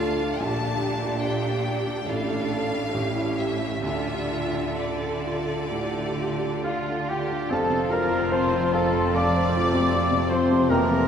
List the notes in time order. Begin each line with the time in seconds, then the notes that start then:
Already playing: D2 A2 D4 F4 D5
0.00 A4 F5
0.20 F4
0.39 A#1 A#2 D4 G4 A5
0.61 D4
0.80 G4
1.03 D4
1.21 D4 G4 D5 G5
1.44 D4
1.65 G4
1.85 D4
2.05 A1 A2 D4 A4 F5
2.28 D4
2.51 A4
2.72 D4
2.92 A1 C#4 G4
3.16 E4
3.38 G4 E5
3.59 E4
3.82 D2 D3 D4 F4 E5
4.07 D4
4.31 F4
4.54 D4
4.77 A4 D5
5.02 D4
5.26 F4
5.49 D4
5.71 A2 G4
5.96 D4
6.19 F4
6.43 D4
6.63 F4 D5 F5
6.87 D4
7.08 F4 G4 G5
7.30 D4
7.49 F1 F2 F3 C4 F4 A4 A5
7.54 F5
7.70 C3
7.89 F3 A#4 A#5
8.10 F4
8.29 F3 C4 C5 C6
8.33 A5
8.52 F4
8.72 A4 F5 A5
8.94 C6
9.15 A3 D4 D5 F5 A5 D6
9.37 C5
9.55 C4 F4
9.74 C3
9.93 F3
10.11 C3
10.30 F3 C5 C6
10.50 C3
10.68 F1 F2 E3 A#3 C4 A#4 G5 A#5
10.90 C3